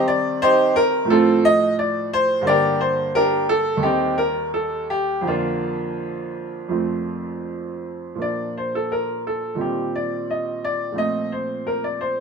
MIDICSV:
0, 0, Header, 1, 2, 480
1, 0, Start_track
1, 0, Key_signature, -2, "major"
1, 0, Tempo, 684932
1, 1725, Time_signature, 4, 2, 24, 8
1, 2688, Tempo, 729927
1, 5568, Tempo, 688073
1, 8349, End_track
2, 0, Start_track
2, 0, Title_t, "Grand piano"
2, 0, Program_c, 0, 0
2, 0, Note_on_c, 0, 48, 61
2, 0, Note_on_c, 0, 51, 52
2, 0, Note_on_c, 0, 55, 53
2, 0, Note_on_c, 0, 60, 51
2, 54, Note_on_c, 0, 74, 94
2, 290, Note_off_c, 0, 74, 0
2, 295, Note_on_c, 0, 72, 112
2, 301, Note_on_c, 0, 63, 89
2, 303, Note_on_c, 0, 67, 79
2, 517, Note_off_c, 0, 63, 0
2, 519, Note_off_c, 0, 67, 0
2, 530, Note_off_c, 0, 72, 0
2, 532, Note_on_c, 0, 70, 104
2, 723, Note_off_c, 0, 48, 0
2, 726, Note_off_c, 0, 51, 0
2, 731, Note_off_c, 0, 55, 0
2, 734, Note_on_c, 0, 45, 55
2, 736, Note_off_c, 0, 60, 0
2, 742, Note_on_c, 0, 53, 48
2, 752, Note_on_c, 0, 57, 45
2, 770, Note_off_c, 0, 70, 0
2, 773, Note_on_c, 0, 69, 88
2, 781, Note_on_c, 0, 60, 71
2, 783, Note_on_c, 0, 65, 74
2, 999, Note_off_c, 0, 60, 0
2, 1000, Note_off_c, 0, 65, 0
2, 1011, Note_off_c, 0, 69, 0
2, 1016, Note_on_c, 0, 75, 110
2, 1217, Note_off_c, 0, 75, 0
2, 1254, Note_on_c, 0, 74, 85
2, 1455, Note_off_c, 0, 74, 0
2, 1496, Note_on_c, 0, 72, 105
2, 1681, Note_off_c, 0, 45, 0
2, 1685, Note_off_c, 0, 53, 0
2, 1690, Note_off_c, 0, 57, 0
2, 1691, Note_on_c, 0, 43, 61
2, 1700, Note_on_c, 0, 50, 50
2, 1708, Note_on_c, 0, 58, 49
2, 1719, Note_on_c, 0, 62, 54
2, 1729, Note_off_c, 0, 72, 0
2, 1731, Note_on_c, 0, 74, 104
2, 1741, Note_on_c, 0, 70, 74
2, 1743, Note_on_c, 0, 67, 82
2, 1955, Note_off_c, 0, 70, 0
2, 1956, Note_off_c, 0, 67, 0
2, 1966, Note_off_c, 0, 74, 0
2, 1967, Note_on_c, 0, 72, 82
2, 2169, Note_off_c, 0, 72, 0
2, 2208, Note_off_c, 0, 62, 0
2, 2209, Note_on_c, 0, 70, 97
2, 2217, Note_on_c, 0, 67, 72
2, 2219, Note_on_c, 0, 62, 66
2, 2412, Note_off_c, 0, 70, 0
2, 2436, Note_off_c, 0, 62, 0
2, 2436, Note_off_c, 0, 67, 0
2, 2448, Note_on_c, 0, 69, 98
2, 2642, Note_off_c, 0, 43, 0
2, 2643, Note_on_c, 0, 39, 49
2, 2646, Note_off_c, 0, 50, 0
2, 2651, Note_off_c, 0, 58, 0
2, 2651, Note_on_c, 0, 51, 43
2, 2660, Note_on_c, 0, 55, 38
2, 2683, Note_on_c, 0, 67, 89
2, 2689, Note_off_c, 0, 69, 0
2, 2692, Note_on_c, 0, 60, 66
2, 2692, Note_on_c, 0, 63, 65
2, 2904, Note_off_c, 0, 60, 0
2, 2904, Note_off_c, 0, 63, 0
2, 2913, Note_on_c, 0, 70, 84
2, 2916, Note_off_c, 0, 67, 0
2, 3116, Note_off_c, 0, 70, 0
2, 3150, Note_on_c, 0, 69, 71
2, 3357, Note_off_c, 0, 69, 0
2, 3389, Note_on_c, 0, 67, 84
2, 3590, Note_off_c, 0, 39, 0
2, 3594, Note_off_c, 0, 51, 0
2, 3594, Note_on_c, 0, 41, 55
2, 3598, Note_off_c, 0, 55, 0
2, 3603, Note_on_c, 0, 50, 41
2, 3634, Note_off_c, 0, 67, 0
2, 3634, Note_on_c, 0, 65, 75
2, 3639, Note_on_c, 0, 62, 66
2, 3641, Note_on_c, 0, 58, 58
2, 4552, Note_off_c, 0, 41, 0
2, 4557, Note_off_c, 0, 50, 0
2, 4562, Note_on_c, 0, 41, 49
2, 4567, Note_on_c, 0, 53, 38
2, 4576, Note_on_c, 0, 57, 39
2, 4584, Note_on_c, 0, 60, 37
2, 5304, Note_off_c, 0, 62, 0
2, 5305, Note_off_c, 0, 58, 0
2, 5328, Note_off_c, 0, 65, 0
2, 5523, Note_off_c, 0, 41, 0
2, 5525, Note_off_c, 0, 53, 0
2, 5526, Note_on_c, 0, 46, 41
2, 5530, Note_off_c, 0, 57, 0
2, 5534, Note_off_c, 0, 60, 0
2, 5537, Note_on_c, 0, 53, 35
2, 5546, Note_on_c, 0, 58, 33
2, 5555, Note_on_c, 0, 62, 35
2, 5569, Note_on_c, 0, 74, 65
2, 5778, Note_off_c, 0, 74, 0
2, 5819, Note_on_c, 0, 72, 61
2, 5938, Note_off_c, 0, 72, 0
2, 5943, Note_on_c, 0, 69, 64
2, 6058, Note_on_c, 0, 70, 70
2, 6060, Note_off_c, 0, 69, 0
2, 6261, Note_off_c, 0, 70, 0
2, 6303, Note_on_c, 0, 69, 63
2, 6486, Note_off_c, 0, 46, 0
2, 6491, Note_off_c, 0, 53, 0
2, 6496, Note_off_c, 0, 58, 0
2, 6497, Note_on_c, 0, 46, 40
2, 6501, Note_off_c, 0, 62, 0
2, 6504, Note_off_c, 0, 69, 0
2, 6506, Note_on_c, 0, 51, 32
2, 6514, Note_on_c, 0, 55, 31
2, 6525, Note_on_c, 0, 60, 32
2, 6540, Note_on_c, 0, 67, 57
2, 6744, Note_off_c, 0, 67, 0
2, 6782, Note_on_c, 0, 74, 69
2, 7020, Note_off_c, 0, 74, 0
2, 7026, Note_on_c, 0, 75, 61
2, 7259, Note_off_c, 0, 75, 0
2, 7263, Note_on_c, 0, 74, 76
2, 7442, Note_off_c, 0, 46, 0
2, 7447, Note_off_c, 0, 51, 0
2, 7451, Note_off_c, 0, 55, 0
2, 7454, Note_on_c, 0, 46, 42
2, 7456, Note_off_c, 0, 60, 0
2, 7460, Note_off_c, 0, 74, 0
2, 7460, Note_on_c, 0, 53, 36
2, 7473, Note_on_c, 0, 57, 34
2, 7482, Note_on_c, 0, 60, 33
2, 7497, Note_on_c, 0, 75, 76
2, 7730, Note_off_c, 0, 75, 0
2, 7735, Note_on_c, 0, 72, 57
2, 7969, Note_off_c, 0, 72, 0
2, 7976, Note_on_c, 0, 70, 70
2, 8091, Note_off_c, 0, 70, 0
2, 8098, Note_on_c, 0, 74, 61
2, 8213, Note_off_c, 0, 74, 0
2, 8214, Note_on_c, 0, 72, 68
2, 8349, Note_off_c, 0, 46, 0
2, 8349, Note_off_c, 0, 53, 0
2, 8349, Note_off_c, 0, 57, 0
2, 8349, Note_off_c, 0, 60, 0
2, 8349, Note_off_c, 0, 72, 0
2, 8349, End_track
0, 0, End_of_file